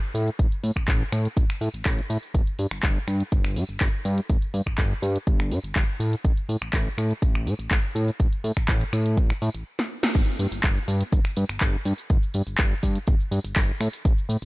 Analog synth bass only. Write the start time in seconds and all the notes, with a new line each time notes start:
0.14 A2
0.39 A1
0.64 A2
0.76 A1
0.88 A1
1.12 A2
1.37 A1
1.61 A2
1.74 A1
1.85 A1
2.10 A2
2.34 G1
2.59 G2
2.71 G1
2.83 G1
3.08 G2
3.32 G1
3.56 G2
3.69 G1
3.81 G1
4.05 G2
4.30 G1
4.54 G2
4.66 G1
4.78 G1
5.02 G2
5.27 G1
5.51 G2
5.64 G1
5.76 G1
6.00 A2
6.24 A1
6.49 A2
6.62 A1
6.73 A1
6.98 A2
7.22 A1
7.46 A2
7.59 A1
7.71 A1
7.95 A2
8.20 A1
8.44 A2
8.57 A1
8.68 A1
8.93 A2
9.17 A1
9.42 A2
9.55 A1
10.15 G1
10.39 G2
10.52 G1
10.64 G1
10.88 G2
11.12 G1
11.37 G2
11.50 G1
11.61 G1
11.85 G2
12.10 G1
12.34 G2
12.47 G1
12.59 G1
12.83 G2
13.08 G1
13.31 G2
13.45 G1
13.56 G1
13.81 A2
14.05 A1
14.29 A2